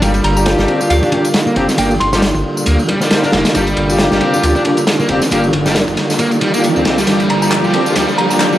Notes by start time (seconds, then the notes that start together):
0.02 G1 D3 G3 A#3 D4 F4 G4, kick, ride, tambourine, riser
0.14 ride, tambourine
0.24 G1 A#5, ride
0.36 A#3 D4 F4 G4 A#5, tambourine
0.46 snare, ride, tambourine
0.58 G1 G3, snare, tambourine
0.68 C4, ride
0.81 F4, tambourine
0.90 D2 F5, ride, tambourine
1.03 D4, kick, tambourine
1.12 A#3 D4 F4 G4, kick, ride
1.24 ride, tambourine
1.34 snare, ride, tambourine
1.47 A#3, tambourine
1.56 F1 A#3 C4 D4 F4 G4, kick, ride
1.69 snare, tambourine
1.78 G1 A#3 D4 F4 G4 G5, ride, tambourine
1.91 tambourine
2.00 G1 C6, kick, ride
2.13 G3 A#3 D4 F4 G4 C6, snare, tambourine
2.22 snare, ride, tambourine
2.35 G1, kick, tambourine
2.57 tambourine
2.66 D2 A#3, ride, tambourine
2.79 tambourine
2.88 G3, kick, ride
3.01 G3, snare, tambourine
3.10 A#3 D4 F4 C5, snare, ride, tambourine
3.23 A#3 D4 F4 A#4, snare, tambourine
3.32 F1 A#3, snare, ride
3.45 snare, ride, tambourine
3.55 G1 G3 A#3 D4 F4 G4, kick, ride, tambourine
3.67 ride, tambourine
3.77 G1, ride
3.89 A#3 D4 F4 G4, tambourine
3.99 snare, ride, tambourine
4.11 G1 G3, snare, tambourine
4.21 C4, ride
4.34 F4, tambourine
4.43 D2, ride, tambourine
4.55 D4, kick, tambourine
4.65 A#3 D4 F4 G4, kick, ride
4.77 ride, tambourine
4.87 snare, ride, tambourine
5.00 A#3, tambourine
5.09 F1 A#3 C4 D4 F4 G4, kick, ride
5.21 snare, tambourine
5.31 G1 A#3 D4 F4 G4, ride, tambourine
5.44 tambourine
5.53 G1, kick, ride
5.66 G3 A#3 D4 F4 G4, snare, tambourine
5.75 snare, ride, tambourine
5.88 G1, kick, tambourine
5.97 snare, ride
6.10 snare, tambourine
6.19 A#3, kick, ride, tambourine
6.31 ride, tambourine
6.41 G3, kick, ride
6.54 A#3 D4 F4 G4, ride, tambourine
6.63 ride, tambourine
6.76 D2 C4, tambourine
6.85 C2 A#3 C4 D4 F4 G4, snare, ride
6.97 G3, snare, tambourine
7.07 G1 G3 A#3 D4 F4 G4, snare, ride, tambourine
7.20 ride, tambourine
7.30 G1 A#5, ride
7.42 A#3 D4 F4 G4 A#5, tambourine
7.52 snare, clap, ride, tambourine
7.64 G1 G3, tambourine
7.74 C4, ride
7.86 F4, tambourine
7.95 D2 G3 A#3 D4 F4 G4, snare, ride, tambourine
8.08 tambourine
8.18 A#5, ride
8.30 A#3 D4 F4 G4 A#5, ride, tambourine
8.40 snare, clap, ride, tambourine
8.53 G3, tambourine